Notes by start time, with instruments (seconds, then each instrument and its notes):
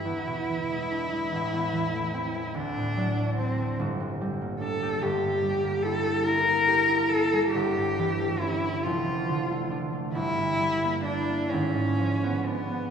Already playing: cello E4, harp E4
0.05 harp E2
0.27 harp B2
0.49 harp E3
0.71 harp G#3
0.92 harp D4
1.12 harp G#3
1.32 harp A1
1.53 harp E2
1.73 harp E3
1.94 harp A3
2.14 harp C4
2.35 harp A3
2.54 harp D2, cello D4
2.76 harp A2
2.97 harp F#3
3.17 harp A3
3.36 cello C4, harp C4
3.59 harp A3
3.79 harp G1
4.00 harp D2
4.21 harp G3
4.41 harp A#3
4.60 harp D4, cello A4
4.83 harp G4
5.02 harp G1, cello G4
5.23 harp G2
5.43 harp G3
5.64 harp A#3
5.83 harp E4, cello A4
6.04 harp G4
6.24 harp E4, cello A#4
6.46 harp A#3
6.68 harp G4
6.89 harp E4
7.09 harp A#3, cello A4
7.33 harp G3
7.50 cello G4
7.54 harp G1
7.76 harp G2
7.98 harp E3
8.20 harp A3
8.39 harp C#4, cello E4
8.64 harp E4
8.83 harp F1, cello F4
9.06 harp F2
9.29 harp D3
9.50 harp A3
9.71 harp D4
9.93 harp A3
10.14 harp G1, cello E4
10.38 harp G2
10.60 harp G3
10.84 harp A#3
11.04 cello D4, harp E4
11.29 harp A#3
11.49 harp G#1, cello C#4
11.75 harp G#2
11.99 harp F3
12.23 harp B3
12.46 cello B3, harp D4
12.71 harp B3